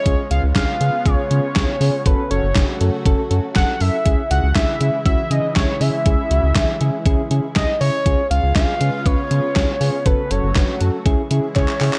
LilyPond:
<<
  \new Staff \with { instrumentName = "Analog synth lead" } { \time 4/4 \key cis \minor \tempo 4 = 120 cis''8 eis''8 eis''4 cis''2 | b'8 cis''4 r4. fis''8 e''8~ | e''8 fis''8 e''4 e''8 dis''8 cis''8 e''8~ | e''2~ e''8 r8 dis''8 cis''8~ |
cis''8 eis''8 eis''4 cis''2 | b'8 cis''4 r4. cis''4 | }
  \new Staff \with { instrumentName = "Synth keys" } { \time 4/4 \key cis \minor <cis' eis' gis'>8 <cis' eis' gis'>8 <cis' eis' gis'>8 <cis' eis' gis'>8 <cis' eis' gis'>8 <cis' eis' gis'>8 <cis' eis' gis'>8 <cis' eis' gis'>8 | <cis' fis' a'>8 <cis' fis' a'>8 <cis' fis' gis'>8 <cis' fis' a'>8 <cis' fis' a'>8 <cis' fis' a'>8 <cis' fis' a'>8 <cis' fis' a'>8 | <cis' e' gis'>8 <cis' e' gis'>8 <cis' e' gis'>8 <cis' e' gis'>8 <cis' e' fis'>8 <cis' e' gis'>8 <cis' e' gis'>8 <cis' e' gis'>8 | <cis' e' gis'>8 <cis' e' fis'>8 <cis' e' gis'>8 <cis' e' gis'>8 <cis' e' gis'>8 <cis' e' gis'>8 <cis' e' gis'>8 <cis' e' gis'>8 |
<cis' eis' gis'>8 <cis' eis' gis'>8 <cis' eis' gis'>8 <cis' eis' gis'>8 <cis' eis' b'>8 <cis' eis' gis'>8 <cis' eis' gis'>8 <cis' eis' gis'>8 | <cis' fis' a'>8 <cis' fis' a'>8 <cis' fis' b'>8 <cis' fis' a'>8 <cis' e' gis'>8 <cis' e' gis'>8 <cis' e' gis'>8 <cis' e' gis'>8 | }
  \new Staff \with { instrumentName = "Analog synth pad" } { \clef bass \time 4/4 \key cis \minor << { <gis b eis'>1 | <fis a fis'>1 | <e gis e'>1~ | <e gis e'>1 |
<gis b eis'>1 | <fis a fis'>2 <e gis e'>2 | } \\ { cis1~ | cis1 | cis1~ | cis1 |
cis1~ | cis1 | } >> }
  \new Staff \with { instrumentName = "Analog synth bass" } { \clef bass \time 4/4 \key cis \minor cis,16 r16 cis,16 cis,16 cis,16 r16 cis16 r16 cis,16 r16 cis16 r16 cis,16 r16 cis16 r16 | fis,,16 r16 fis,,16 fis,,16 fis,,16 r16 fis,16 r16 fis,,16 r16 fis,16 r16 fis,,16 r16 fis,16 r16 | cis,16 r16 cis,16 cis,16 cis,16 r16 cis16 r16 cis,16 r16 cis16 r16 cis,16 r16 cis16 r16 | cis,16 r16 cis,16 cis,16 cis,16 r16 cis16 r16 cis,16 r16 cis16 r16 cis,16 r16 cis16 r16 |
cis,16 r16 cis,16 cis,16 cis,16 r16 cis16 r16 cis,16 r16 cis16 r16 cis,16 r16 cis16 r16 | fis,,16 r16 fis,,16 fis,,16 fis,,16 r16 fis,16 r16 cis,16 r16 cis16 r16 cis,16 r16 cis16 r16 | }
  \new DrumStaff \with { instrumentName = "Drums" } \drummode { \time 4/4 <hh bd>8 hh8 <hc hh bd sn>8 hh8 <hh bd>8 hh8 <hc hh bd sn>8 hho8 | <hh bd>8 hh8 <hc hh bd sn>8 hh8 <hh bd>8 hh8 <hc hh bd sn>8 hho8 | <hh bd>8 hh8 <hc hh bd sn>8 hh8 <hh bd>8 hh8 <hc hh bd sn>8 hho8 | <hh bd>8 hh8 <hc hh bd sn>8 hh8 <hh bd>8 hh8 <hc hh bd sn>8 hho8 |
<hh bd>8 hh8 <hc hh bd sn>8 hh8 <hh bd>8 hh8 <hc hh bd sn>8 hho8 | <hh bd>8 hh8 <hc hh bd sn>8 hh8 <hh bd>8 hh8 <hc hh bd>16 hc16 <hc hho>16 hc16 | }
>>